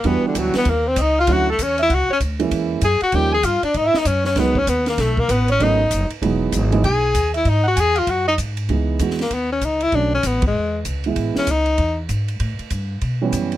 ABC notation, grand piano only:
X:1
M:4/4
L:1/8
Q:"Swing" 1/4=194
K:C#m
V:1 name="Grand piano"
[E,=G,B,=DF]4 z4 | [=D,F,A,CE] z6 [E,G,^A,CE]- | [E,G,^A,CE]2 z2 [^E,=G,A,CD] z3 | z4 [D,F,G,B,D] z3 |
z4 [D,F,A,B,C] z3 | [E,F,G,B,D]3 [E,F,G,B,D] z4 | z8 | [E,G,B,D]2 [E,G,B,F] z4 z |
[=D,F,A,C] z6 [E,G,B,E]- | [E,G,B,E]2 z6 | z4 z [E,=G,B,C]3 |]